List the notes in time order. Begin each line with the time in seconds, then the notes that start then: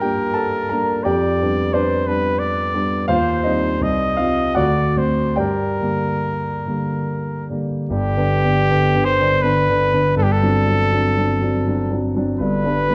Already playing: G2 G3 A#3 D4 F4 G4 A#4 D5 F5
0.00 G3 A#3 D4 G4 G5
0.34 A4 A5
0.70 G3 A#3 D4 A#4 A#5
1.04 F2 G4 D5 G5
1.42 G3 B3 D4
1.73 D4 B4 C5 D5
2.07 G3 B3 D4 B4
2.39 D5
2.74 G3 B3 D4
3.08 D#2 F4 C5 F5
3.43 G3 C4 D#4 C5 D#5
3.81 C2 D#5
4.17 G3 C4 F4 F5
4.55 D2 F#4 D5 F#5
4.96 D3 A3 C4 C5
5.36 G2 G4 D5 G5
5.40 A#4
5.81 D3 G3 A#3
6.66 D3 G3 A#3
7.50 D3 G3 A#3
7.89 G1 G2 G4
8.17 D3 B3 D4
8.44 D3 B3 D4
8.70 D3 B3 D4
8.95 D3 B3 D4
9.05 C5
9.20 D3 B3 D4
9.42 D3 B3 D4 B4
9.69 D3 B3 D4
9.93 D3 B3 D4
10.16 G1 G2 A4
10.23 G4
10.32 A4
10.42 F#3 C4 D4
10.68 F#3 C4 D4
10.92 F#3 C4 D4
11.18 F#3 C4 D4
11.41 F#3 C4 D4
11.67 F#3 C4 D4
11.92 F#3 C4 D4
12.16 F#3 C4 D4
12.39 G1 G2 B4
12.64 G3 B3 D4
12.88 G3 B3 D4